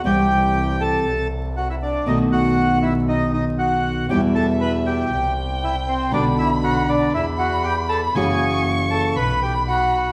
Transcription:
<<
  \new Staff \with { instrumentName = "Violin" } { \time 4/4 \key b \phrygian \tempo 4 = 118 r1 | r1 | e''2 g''2 | b''2 b''2 |
cis'''2 b''2 | }
  \new Staff \with { instrumentName = "Bandoneon" } { \time 4/4 \key b \phrygian <g' g''>4. <a' a''>4 r8 <fis' fis''>16 <e' e''>16 <d' d''>8 | <dis' dis''>8 <fis' fis''>4 <e' e''>8 <dis' dis''>8 <dis' dis''>8 <fis' fis''>4 | <g' g''>8 <a' a''>8 <b' b''>8 <g' g''>4 r8 <e' e''>8 <c' c''>8 | <d' d''>8 <e' e''>8 <fis' fis''>8 <d' d''>8 <e' e''>8 <fis' fis''>8 <g' g''>8 <a' a''>8 |
<gis' gis''>4 r8 <a' a''>8 <b' b''>8 <g' g''>8 <fis' fis''>4 | }
  \new Staff \with { instrumentName = "Nylon-string guitar" } { \time 4/4 \key b \phrygian <c e g c' e'>2 r2 | <b, dis a b fis'>1 | <b, e g b e'>2 r2 | <b, d b d' fis'>2 r2 |
<cis e ais cis' fis'>2 r2 | }
  \new Staff \with { instrumentName = "Double bass" } { \clef bass \time 4/4 \key b \phrygian c,2 c,2 | b,,1 | e,2 c,2 | b,,2 e,2 |
fis,,2 b,,2 | }
>>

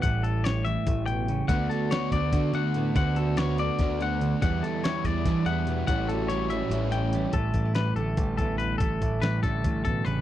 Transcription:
<<
  \new Staff \with { instrumentName = "Clean electric guitar" } { \time 7/8 \key a \mixolydian \tempo 4 = 144 fis''8 a'8 cis''8 e''4 g''4 | fis''8 a'8 cis''8 d''4 fis''4 | fis''8 a'8 cis''8 d''4 fis''4 | fis''8 a'8 cis''8 d''4 fis''4 |
fis''8 a'8 cis''8 e''4 g''4 | a'4 b'8 a'4 a'8 b'8 | a'4 b'8 a'4 a'8 b'8 | }
  \new Staff \with { instrumentName = "Overdriven electric guitar" } { \time 7/8 \key a \mixolydian r2. r8 | <d a d' fis'>4 <d a d' fis'>8 <a d' fis'>8 <d a d' fis'>8 <a d' fis'>4 | <d a d' fis'>4 <d a d' fis'>8 <a d' fis'>8 <d a d' fis'>8 <a d' fis'>4 | <e g b e'>4 <e g b e'>8 <g b e'>8 <e g b e'>8 <g b e'>4 |
<a, e g cis' e'>4 <a, e g cis' e'>8 <g cis' e'>8 <e g cis' e'>8 <g cis' e'>4 | r2. r8 | r2. r8 | }
  \new Staff \with { instrumentName = "Clean electric guitar" } { \clef bass \time 7/8 \key a \mixolydian << { g4 g2~ g8 | b8 fis'8 b4 fis'8 fis'8 b8 | b8 fis'8 b2~ b8 | g8 e'8 g4 d'8 b8 g8 |
g8 fis'8 g4. cis'8 g8 | a8 d'16 e'16 g8 a8 g8 a4 | a8 e'8 g8 a2 | } \\ { a,4. e8 a,8 b,8 cis8 | d,4. d4. a,8 | d,4. d4. d,8 | e,4. e4. b,8 |
a,4. e4. e,8 | a,4. d4 e,4 | a,4. d8 a,8 b,8 cis8 | } >> }
  \new Staff \with { instrumentName = "Picked electric bass" } { \clef bass \time 7/8 \key a \mixolydian a,,2 a,,4. | d,8 r4 d,8 d8 d4 | d,2 d,4. | e,8 r4 e,8 e8 e,4 |
a,,2 a,,4. | a,,8 a,,4 a,,8 a,,8 a,,4 | a,,8 a,,8 a,,8 a,,8 a,,8 a,,8 a,,8 | }
  \new DrumStaff \with { instrumentName = "Drums" } \drummode { \time 7/8 <hh bd>8 hh8 <hh sn>8 hh8 <hh bd>8 hh8 hh8 | <hh bd>8 <hh sn>8 <hh sn>8 <hh bd>8 <hh bd>8 hh8 hh8 | <hh bd>8 hh8 <hh sn>8 hh8 <hh bd sn>8 hh8 hh8 | <hh bd>8 <hh sn>8 <hh sn>8 <hh bd sn>8 <hh bd sn>8 hh8 hh8 |
<hh bd>8 hh8 hh8 hh8 hh8 hh8 hh8 | <hh bd>8 <hh bd>8 <hh sn>8 hh8 <hh bd>8 <hh bd>8 hh8 | <hh bd>8 <hh bd>8 <hh sn>8 <hh bd>8 <hh bd>8 <hh bd>8 hh8 | }
>>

